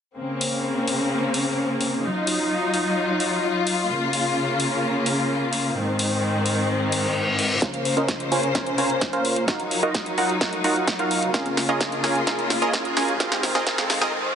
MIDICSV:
0, 0, Header, 1, 6, 480
1, 0, Start_track
1, 0, Key_signature, -5, "minor"
1, 0, Tempo, 465116
1, 184, Time_signature, 4, 2, 24, 8
1, 14809, End_track
2, 0, Start_track
2, 0, Title_t, "Supersaw synth"
2, 0, Program_c, 0, 81
2, 7864, Note_on_c, 0, 61, 74
2, 7864, Note_on_c, 0, 65, 67
2, 7864, Note_on_c, 0, 70, 69
2, 7864, Note_on_c, 0, 72, 69
2, 7864, Note_on_c, 0, 77, 82
2, 8195, Note_off_c, 0, 61, 0
2, 8195, Note_off_c, 0, 65, 0
2, 8195, Note_off_c, 0, 70, 0
2, 8195, Note_off_c, 0, 72, 0
2, 8195, Note_off_c, 0, 77, 0
2, 8224, Note_on_c, 0, 61, 94
2, 8224, Note_on_c, 0, 65, 86
2, 8224, Note_on_c, 0, 70, 87
2, 8224, Note_on_c, 0, 72, 89
2, 8224, Note_on_c, 0, 75, 103
2, 8555, Note_off_c, 0, 61, 0
2, 8555, Note_off_c, 0, 65, 0
2, 8555, Note_off_c, 0, 70, 0
2, 8555, Note_off_c, 0, 72, 0
2, 8555, Note_off_c, 0, 75, 0
2, 8583, Note_on_c, 0, 72, 84
2, 8583, Note_on_c, 0, 80, 106
2, 8584, Note_on_c, 0, 61, 93
2, 8584, Note_on_c, 0, 65, 85
2, 8584, Note_on_c, 0, 70, 83
2, 8758, Note_off_c, 0, 61, 0
2, 8758, Note_off_c, 0, 65, 0
2, 8758, Note_off_c, 0, 70, 0
2, 8758, Note_off_c, 0, 72, 0
2, 8758, Note_off_c, 0, 80, 0
2, 8823, Note_on_c, 0, 61, 79
2, 8823, Note_on_c, 0, 65, 71
2, 8823, Note_on_c, 0, 70, 70
2, 8823, Note_on_c, 0, 72, 76
2, 8823, Note_on_c, 0, 80, 90
2, 9034, Note_off_c, 0, 61, 0
2, 9034, Note_off_c, 0, 65, 0
2, 9034, Note_off_c, 0, 70, 0
2, 9034, Note_off_c, 0, 72, 0
2, 9035, Note_off_c, 0, 80, 0
2, 9063, Note_on_c, 0, 61, 100
2, 9063, Note_on_c, 0, 65, 92
2, 9063, Note_on_c, 0, 70, 88
2, 9063, Note_on_c, 0, 72, 86
2, 9063, Note_on_c, 0, 80, 105
2, 9394, Note_off_c, 0, 61, 0
2, 9394, Note_off_c, 0, 65, 0
2, 9394, Note_off_c, 0, 80, 0
2, 9395, Note_off_c, 0, 70, 0
2, 9395, Note_off_c, 0, 72, 0
2, 9423, Note_on_c, 0, 61, 72
2, 9423, Note_on_c, 0, 65, 68
2, 9423, Note_on_c, 0, 70, 65
2, 9423, Note_on_c, 0, 72, 65
2, 9423, Note_on_c, 0, 77, 82
2, 9754, Note_off_c, 0, 61, 0
2, 9754, Note_off_c, 0, 65, 0
2, 9754, Note_off_c, 0, 70, 0
2, 9754, Note_off_c, 0, 72, 0
2, 9754, Note_off_c, 0, 77, 0
2, 9783, Note_on_c, 0, 65, 70
2, 9783, Note_on_c, 0, 70, 68
2, 9783, Note_on_c, 0, 77, 80
2, 9784, Note_on_c, 0, 63, 74
2, 9784, Note_on_c, 0, 66, 71
2, 10115, Note_off_c, 0, 63, 0
2, 10115, Note_off_c, 0, 65, 0
2, 10115, Note_off_c, 0, 66, 0
2, 10115, Note_off_c, 0, 70, 0
2, 10115, Note_off_c, 0, 77, 0
2, 10143, Note_on_c, 0, 63, 99
2, 10143, Note_on_c, 0, 65, 88
2, 10143, Note_on_c, 0, 66, 83
2, 10143, Note_on_c, 0, 75, 104
2, 10144, Note_on_c, 0, 70, 88
2, 10474, Note_off_c, 0, 65, 0
2, 10475, Note_off_c, 0, 63, 0
2, 10475, Note_off_c, 0, 66, 0
2, 10475, Note_off_c, 0, 70, 0
2, 10475, Note_off_c, 0, 75, 0
2, 10503, Note_on_c, 0, 65, 90
2, 10503, Note_on_c, 0, 66, 84
2, 10503, Note_on_c, 0, 70, 88
2, 10503, Note_on_c, 0, 78, 104
2, 10504, Note_on_c, 0, 63, 94
2, 10678, Note_off_c, 0, 63, 0
2, 10678, Note_off_c, 0, 65, 0
2, 10678, Note_off_c, 0, 66, 0
2, 10678, Note_off_c, 0, 70, 0
2, 10678, Note_off_c, 0, 78, 0
2, 10743, Note_on_c, 0, 63, 82
2, 10743, Note_on_c, 0, 65, 71
2, 10743, Note_on_c, 0, 66, 75
2, 10743, Note_on_c, 0, 70, 72
2, 10743, Note_on_c, 0, 78, 86
2, 10954, Note_off_c, 0, 63, 0
2, 10954, Note_off_c, 0, 70, 0
2, 10955, Note_off_c, 0, 65, 0
2, 10955, Note_off_c, 0, 66, 0
2, 10955, Note_off_c, 0, 78, 0
2, 10983, Note_on_c, 0, 63, 99
2, 10983, Note_on_c, 0, 65, 91
2, 10983, Note_on_c, 0, 66, 87
2, 10983, Note_on_c, 0, 70, 91
2, 10983, Note_on_c, 0, 78, 103
2, 11314, Note_off_c, 0, 63, 0
2, 11314, Note_off_c, 0, 70, 0
2, 11314, Note_off_c, 0, 78, 0
2, 11315, Note_off_c, 0, 65, 0
2, 11315, Note_off_c, 0, 66, 0
2, 11343, Note_on_c, 0, 63, 73
2, 11343, Note_on_c, 0, 65, 68
2, 11343, Note_on_c, 0, 66, 66
2, 11343, Note_on_c, 0, 77, 84
2, 11344, Note_on_c, 0, 70, 69
2, 11675, Note_off_c, 0, 63, 0
2, 11675, Note_off_c, 0, 65, 0
2, 11675, Note_off_c, 0, 66, 0
2, 11675, Note_off_c, 0, 70, 0
2, 11675, Note_off_c, 0, 77, 0
2, 11703, Note_on_c, 0, 61, 70
2, 11703, Note_on_c, 0, 65, 61
2, 11703, Note_on_c, 0, 68, 64
2, 11703, Note_on_c, 0, 70, 67
2, 11703, Note_on_c, 0, 77, 77
2, 12035, Note_off_c, 0, 61, 0
2, 12035, Note_off_c, 0, 65, 0
2, 12035, Note_off_c, 0, 68, 0
2, 12035, Note_off_c, 0, 70, 0
2, 12035, Note_off_c, 0, 77, 0
2, 12063, Note_on_c, 0, 61, 88
2, 12063, Note_on_c, 0, 65, 78
2, 12063, Note_on_c, 0, 68, 82
2, 12063, Note_on_c, 0, 70, 80
2, 12063, Note_on_c, 0, 75, 96
2, 12394, Note_off_c, 0, 65, 0
2, 12394, Note_off_c, 0, 68, 0
2, 12394, Note_off_c, 0, 70, 0
2, 12394, Note_off_c, 0, 75, 0
2, 12395, Note_off_c, 0, 61, 0
2, 12423, Note_on_c, 0, 61, 89
2, 12423, Note_on_c, 0, 65, 81
2, 12423, Note_on_c, 0, 68, 77
2, 12423, Note_on_c, 0, 70, 81
2, 12423, Note_on_c, 0, 80, 99
2, 12598, Note_off_c, 0, 61, 0
2, 12598, Note_off_c, 0, 65, 0
2, 12598, Note_off_c, 0, 68, 0
2, 12598, Note_off_c, 0, 70, 0
2, 12598, Note_off_c, 0, 80, 0
2, 12663, Note_on_c, 0, 65, 67
2, 12664, Note_on_c, 0, 61, 72
2, 12664, Note_on_c, 0, 68, 65
2, 12664, Note_on_c, 0, 70, 68
2, 12664, Note_on_c, 0, 77, 79
2, 12995, Note_off_c, 0, 61, 0
2, 12995, Note_off_c, 0, 65, 0
2, 12995, Note_off_c, 0, 68, 0
2, 12995, Note_off_c, 0, 70, 0
2, 12995, Note_off_c, 0, 77, 0
2, 13023, Note_on_c, 0, 61, 91
2, 13023, Note_on_c, 0, 65, 86
2, 13023, Note_on_c, 0, 68, 86
2, 13023, Note_on_c, 0, 70, 84
2, 13023, Note_on_c, 0, 75, 105
2, 13354, Note_off_c, 0, 61, 0
2, 13354, Note_off_c, 0, 70, 0
2, 13355, Note_off_c, 0, 65, 0
2, 13355, Note_off_c, 0, 68, 0
2, 13355, Note_off_c, 0, 75, 0
2, 13384, Note_on_c, 0, 61, 91
2, 13384, Note_on_c, 0, 65, 87
2, 13384, Note_on_c, 0, 68, 82
2, 13384, Note_on_c, 0, 70, 85
2, 13384, Note_on_c, 0, 80, 101
2, 13558, Note_off_c, 0, 61, 0
2, 13558, Note_off_c, 0, 65, 0
2, 13558, Note_off_c, 0, 68, 0
2, 13558, Note_off_c, 0, 70, 0
2, 13558, Note_off_c, 0, 80, 0
2, 13624, Note_on_c, 0, 60, 74
2, 13624, Note_on_c, 0, 65, 70
2, 13624, Note_on_c, 0, 68, 68
2, 13624, Note_on_c, 0, 70, 68
2, 13624, Note_on_c, 0, 77, 83
2, 13955, Note_off_c, 0, 60, 0
2, 13955, Note_off_c, 0, 65, 0
2, 13955, Note_off_c, 0, 68, 0
2, 13955, Note_off_c, 0, 70, 0
2, 13955, Note_off_c, 0, 77, 0
2, 13983, Note_on_c, 0, 60, 96
2, 13984, Note_on_c, 0, 65, 90
2, 13984, Note_on_c, 0, 68, 90
2, 13984, Note_on_c, 0, 70, 83
2, 13984, Note_on_c, 0, 75, 102
2, 14084, Note_off_c, 0, 60, 0
2, 14084, Note_off_c, 0, 65, 0
2, 14084, Note_off_c, 0, 68, 0
2, 14084, Note_off_c, 0, 70, 0
2, 14085, Note_off_c, 0, 75, 0
2, 14103, Note_on_c, 0, 60, 79
2, 14103, Note_on_c, 0, 65, 71
2, 14103, Note_on_c, 0, 68, 69
2, 14103, Note_on_c, 0, 70, 70
2, 14103, Note_on_c, 0, 77, 85
2, 14434, Note_off_c, 0, 70, 0
2, 14434, Note_off_c, 0, 77, 0
2, 14435, Note_off_c, 0, 60, 0
2, 14435, Note_off_c, 0, 65, 0
2, 14435, Note_off_c, 0, 68, 0
2, 14463, Note_on_c, 0, 60, 93
2, 14463, Note_on_c, 0, 65, 88
2, 14463, Note_on_c, 0, 68, 88
2, 14463, Note_on_c, 0, 70, 88
2, 14463, Note_on_c, 0, 75, 108
2, 14564, Note_off_c, 0, 60, 0
2, 14564, Note_off_c, 0, 65, 0
2, 14564, Note_off_c, 0, 68, 0
2, 14564, Note_off_c, 0, 70, 0
2, 14564, Note_off_c, 0, 75, 0
2, 14809, End_track
3, 0, Start_track
3, 0, Title_t, "String section"
3, 0, Program_c, 1, 48
3, 185, Note_on_c, 1, 49, 69
3, 185, Note_on_c, 1, 58, 68
3, 185, Note_on_c, 1, 60, 79
3, 2085, Note_off_c, 1, 49, 0
3, 2085, Note_off_c, 1, 58, 0
3, 2085, Note_off_c, 1, 60, 0
3, 2105, Note_on_c, 1, 54, 73
3, 2105, Note_on_c, 1, 63, 69
3, 2105, Note_on_c, 1, 65, 82
3, 4005, Note_off_c, 1, 54, 0
3, 4005, Note_off_c, 1, 63, 0
3, 4022, Note_on_c, 1, 49, 76
3, 4023, Note_on_c, 1, 58, 70
3, 5906, Note_off_c, 1, 65, 0
3, 5924, Note_off_c, 1, 49, 0
3, 5924, Note_off_c, 1, 58, 0
3, 5943, Note_on_c, 1, 51, 70
3, 5943, Note_on_c, 1, 60, 83
3, 5944, Note_on_c, 1, 44, 78
3, 7844, Note_off_c, 1, 51, 0
3, 7844, Note_off_c, 1, 60, 0
3, 7845, Note_off_c, 1, 44, 0
3, 7861, Note_on_c, 1, 49, 78
3, 7861, Note_on_c, 1, 58, 69
3, 7862, Note_on_c, 1, 72, 84
3, 9763, Note_off_c, 1, 49, 0
3, 9763, Note_off_c, 1, 58, 0
3, 9763, Note_off_c, 1, 72, 0
3, 9781, Note_on_c, 1, 54, 72
3, 9782, Note_on_c, 1, 63, 84
3, 11683, Note_off_c, 1, 54, 0
3, 11683, Note_off_c, 1, 63, 0
3, 11700, Note_on_c, 1, 65, 87
3, 11702, Note_on_c, 1, 49, 80
3, 11702, Note_on_c, 1, 58, 72
3, 13603, Note_off_c, 1, 58, 0
3, 13603, Note_off_c, 1, 65, 0
3, 13604, Note_off_c, 1, 49, 0
3, 13623, Note_on_c, 1, 44, 79
3, 13623, Note_on_c, 1, 60, 90
3, 13624, Note_on_c, 1, 51, 75
3, 14809, Note_off_c, 1, 44, 0
3, 14809, Note_off_c, 1, 51, 0
3, 14809, Note_off_c, 1, 60, 0
3, 14809, End_track
4, 0, Start_track
4, 0, Title_t, "Reverse cymbal"
4, 0, Program_c, 2, 119
4, 6903, Note_on_c, 2, 60, 73
4, 7863, Note_off_c, 2, 60, 0
4, 14809, End_track
5, 0, Start_track
5, 0, Title_t, "Riser"
5, 0, Program_c, 3, 103
5, 7863, Note_on_c, 3, 60, 77
5, 14583, Note_off_c, 3, 60, 0
5, 14809, End_track
6, 0, Start_track
6, 0, Title_t, "Drums"
6, 423, Note_on_c, 9, 46, 95
6, 527, Note_off_c, 9, 46, 0
6, 903, Note_on_c, 9, 46, 85
6, 1007, Note_off_c, 9, 46, 0
6, 1384, Note_on_c, 9, 46, 103
6, 1487, Note_off_c, 9, 46, 0
6, 1864, Note_on_c, 9, 46, 84
6, 1967, Note_off_c, 9, 46, 0
6, 2344, Note_on_c, 9, 46, 102
6, 2447, Note_off_c, 9, 46, 0
6, 2824, Note_on_c, 9, 46, 89
6, 2927, Note_off_c, 9, 46, 0
6, 3304, Note_on_c, 9, 46, 105
6, 3407, Note_off_c, 9, 46, 0
6, 3784, Note_on_c, 9, 46, 87
6, 3888, Note_off_c, 9, 46, 0
6, 4263, Note_on_c, 9, 46, 103
6, 4366, Note_off_c, 9, 46, 0
6, 4744, Note_on_c, 9, 46, 91
6, 4847, Note_off_c, 9, 46, 0
6, 5223, Note_on_c, 9, 46, 109
6, 5327, Note_off_c, 9, 46, 0
6, 5703, Note_on_c, 9, 46, 91
6, 5807, Note_off_c, 9, 46, 0
6, 6183, Note_on_c, 9, 46, 103
6, 6286, Note_off_c, 9, 46, 0
6, 6663, Note_on_c, 9, 46, 91
6, 6766, Note_off_c, 9, 46, 0
6, 7144, Note_on_c, 9, 46, 103
6, 7247, Note_off_c, 9, 46, 0
6, 7623, Note_on_c, 9, 46, 93
6, 7726, Note_off_c, 9, 46, 0
6, 7864, Note_on_c, 9, 36, 113
6, 7864, Note_on_c, 9, 38, 45
6, 7864, Note_on_c, 9, 42, 93
6, 7967, Note_off_c, 9, 36, 0
6, 7967, Note_off_c, 9, 38, 0
6, 7967, Note_off_c, 9, 42, 0
6, 7985, Note_on_c, 9, 42, 40
6, 8088, Note_off_c, 9, 42, 0
6, 8105, Note_on_c, 9, 46, 104
6, 8208, Note_off_c, 9, 46, 0
6, 8225, Note_on_c, 9, 42, 37
6, 8328, Note_off_c, 9, 42, 0
6, 8343, Note_on_c, 9, 36, 115
6, 8344, Note_on_c, 9, 38, 49
6, 8344, Note_on_c, 9, 42, 94
6, 8447, Note_off_c, 9, 36, 0
6, 8447, Note_off_c, 9, 38, 0
6, 8447, Note_off_c, 9, 42, 0
6, 8464, Note_on_c, 9, 42, 39
6, 8567, Note_off_c, 9, 42, 0
6, 8583, Note_on_c, 9, 46, 89
6, 8687, Note_off_c, 9, 46, 0
6, 8704, Note_on_c, 9, 42, 38
6, 8807, Note_off_c, 9, 42, 0
6, 8823, Note_on_c, 9, 36, 114
6, 8823, Note_on_c, 9, 38, 52
6, 8823, Note_on_c, 9, 42, 93
6, 8926, Note_off_c, 9, 36, 0
6, 8926, Note_off_c, 9, 38, 0
6, 8926, Note_off_c, 9, 42, 0
6, 8943, Note_on_c, 9, 42, 39
6, 9046, Note_off_c, 9, 42, 0
6, 9062, Note_on_c, 9, 46, 104
6, 9165, Note_off_c, 9, 46, 0
6, 9182, Note_on_c, 9, 42, 41
6, 9286, Note_off_c, 9, 42, 0
6, 9302, Note_on_c, 9, 38, 52
6, 9302, Note_on_c, 9, 42, 92
6, 9303, Note_on_c, 9, 36, 114
6, 9405, Note_off_c, 9, 38, 0
6, 9405, Note_off_c, 9, 42, 0
6, 9406, Note_off_c, 9, 36, 0
6, 9423, Note_on_c, 9, 42, 40
6, 9526, Note_off_c, 9, 42, 0
6, 9543, Note_on_c, 9, 46, 87
6, 9646, Note_off_c, 9, 46, 0
6, 9663, Note_on_c, 9, 42, 42
6, 9766, Note_off_c, 9, 42, 0
6, 9782, Note_on_c, 9, 38, 57
6, 9782, Note_on_c, 9, 42, 90
6, 9783, Note_on_c, 9, 36, 125
6, 9886, Note_off_c, 9, 36, 0
6, 9886, Note_off_c, 9, 38, 0
6, 9886, Note_off_c, 9, 42, 0
6, 9903, Note_on_c, 9, 42, 39
6, 10006, Note_off_c, 9, 42, 0
6, 10023, Note_on_c, 9, 46, 107
6, 10126, Note_off_c, 9, 46, 0
6, 10143, Note_on_c, 9, 42, 38
6, 10246, Note_off_c, 9, 42, 0
6, 10263, Note_on_c, 9, 36, 123
6, 10264, Note_on_c, 9, 38, 62
6, 10264, Note_on_c, 9, 42, 92
6, 10366, Note_off_c, 9, 36, 0
6, 10367, Note_off_c, 9, 38, 0
6, 10367, Note_off_c, 9, 42, 0
6, 10384, Note_on_c, 9, 42, 38
6, 10487, Note_off_c, 9, 42, 0
6, 10503, Note_on_c, 9, 46, 94
6, 10606, Note_off_c, 9, 46, 0
6, 10624, Note_on_c, 9, 42, 38
6, 10727, Note_off_c, 9, 42, 0
6, 10743, Note_on_c, 9, 36, 125
6, 10744, Note_on_c, 9, 38, 64
6, 10744, Note_on_c, 9, 42, 92
6, 10846, Note_off_c, 9, 36, 0
6, 10847, Note_off_c, 9, 38, 0
6, 10847, Note_off_c, 9, 42, 0
6, 10863, Note_on_c, 9, 42, 40
6, 10967, Note_off_c, 9, 42, 0
6, 10983, Note_on_c, 9, 46, 114
6, 11087, Note_off_c, 9, 46, 0
6, 11104, Note_on_c, 9, 42, 40
6, 11207, Note_off_c, 9, 42, 0
6, 11223, Note_on_c, 9, 36, 114
6, 11223, Note_on_c, 9, 38, 69
6, 11223, Note_on_c, 9, 42, 88
6, 11326, Note_off_c, 9, 36, 0
6, 11326, Note_off_c, 9, 38, 0
6, 11326, Note_off_c, 9, 42, 0
6, 11344, Note_on_c, 9, 42, 41
6, 11447, Note_off_c, 9, 42, 0
6, 11464, Note_on_c, 9, 46, 92
6, 11567, Note_off_c, 9, 46, 0
6, 11584, Note_on_c, 9, 42, 39
6, 11688, Note_off_c, 9, 42, 0
6, 11703, Note_on_c, 9, 36, 127
6, 11703, Note_on_c, 9, 38, 74
6, 11703, Note_on_c, 9, 42, 85
6, 11806, Note_off_c, 9, 36, 0
6, 11806, Note_off_c, 9, 38, 0
6, 11806, Note_off_c, 9, 42, 0
6, 11824, Note_on_c, 9, 42, 38
6, 11927, Note_off_c, 9, 42, 0
6, 11944, Note_on_c, 9, 38, 76
6, 11944, Note_on_c, 9, 46, 109
6, 12047, Note_off_c, 9, 38, 0
6, 12047, Note_off_c, 9, 46, 0
6, 12064, Note_on_c, 9, 42, 37
6, 12167, Note_off_c, 9, 42, 0
6, 12183, Note_on_c, 9, 36, 124
6, 12184, Note_on_c, 9, 38, 76
6, 12184, Note_on_c, 9, 42, 86
6, 12286, Note_off_c, 9, 36, 0
6, 12287, Note_off_c, 9, 38, 0
6, 12287, Note_off_c, 9, 42, 0
6, 12304, Note_on_c, 9, 42, 38
6, 12407, Note_off_c, 9, 42, 0
6, 12423, Note_on_c, 9, 38, 81
6, 12423, Note_on_c, 9, 46, 97
6, 12526, Note_off_c, 9, 38, 0
6, 12526, Note_off_c, 9, 46, 0
6, 12544, Note_on_c, 9, 42, 37
6, 12647, Note_off_c, 9, 42, 0
6, 12663, Note_on_c, 9, 36, 124
6, 12663, Note_on_c, 9, 38, 79
6, 12663, Note_on_c, 9, 42, 85
6, 12766, Note_off_c, 9, 36, 0
6, 12766, Note_off_c, 9, 38, 0
6, 12766, Note_off_c, 9, 42, 0
6, 12784, Note_on_c, 9, 42, 40
6, 12887, Note_off_c, 9, 42, 0
6, 12903, Note_on_c, 9, 38, 89
6, 12903, Note_on_c, 9, 46, 113
6, 13007, Note_off_c, 9, 38, 0
6, 13007, Note_off_c, 9, 46, 0
6, 13023, Note_on_c, 9, 42, 40
6, 13127, Note_off_c, 9, 42, 0
6, 13142, Note_on_c, 9, 38, 89
6, 13142, Note_on_c, 9, 42, 87
6, 13143, Note_on_c, 9, 36, 125
6, 13245, Note_off_c, 9, 38, 0
6, 13245, Note_off_c, 9, 42, 0
6, 13246, Note_off_c, 9, 36, 0
6, 13263, Note_on_c, 9, 42, 40
6, 13366, Note_off_c, 9, 42, 0
6, 13383, Note_on_c, 9, 38, 88
6, 13383, Note_on_c, 9, 46, 97
6, 13486, Note_off_c, 9, 38, 0
6, 13486, Note_off_c, 9, 46, 0
6, 13504, Note_on_c, 9, 42, 39
6, 13607, Note_off_c, 9, 42, 0
6, 13623, Note_on_c, 9, 36, 127
6, 13624, Note_on_c, 9, 38, 92
6, 13624, Note_on_c, 9, 42, 90
6, 13726, Note_off_c, 9, 36, 0
6, 13727, Note_off_c, 9, 38, 0
6, 13727, Note_off_c, 9, 42, 0
6, 13744, Note_on_c, 9, 38, 82
6, 13744, Note_on_c, 9, 42, 40
6, 13847, Note_off_c, 9, 38, 0
6, 13847, Note_off_c, 9, 42, 0
6, 13863, Note_on_c, 9, 38, 93
6, 13863, Note_on_c, 9, 46, 108
6, 13966, Note_off_c, 9, 38, 0
6, 13966, Note_off_c, 9, 46, 0
6, 13984, Note_on_c, 9, 38, 80
6, 14088, Note_off_c, 9, 38, 0
6, 14103, Note_on_c, 9, 36, 127
6, 14104, Note_on_c, 9, 38, 93
6, 14104, Note_on_c, 9, 42, 90
6, 14206, Note_off_c, 9, 36, 0
6, 14207, Note_off_c, 9, 38, 0
6, 14207, Note_off_c, 9, 42, 0
6, 14223, Note_on_c, 9, 38, 83
6, 14223, Note_on_c, 9, 42, 36
6, 14327, Note_off_c, 9, 38, 0
6, 14327, Note_off_c, 9, 42, 0
6, 14343, Note_on_c, 9, 38, 102
6, 14343, Note_on_c, 9, 46, 100
6, 14446, Note_off_c, 9, 38, 0
6, 14446, Note_off_c, 9, 46, 0
6, 14464, Note_on_c, 9, 38, 89
6, 14567, Note_off_c, 9, 38, 0
6, 14809, End_track
0, 0, End_of_file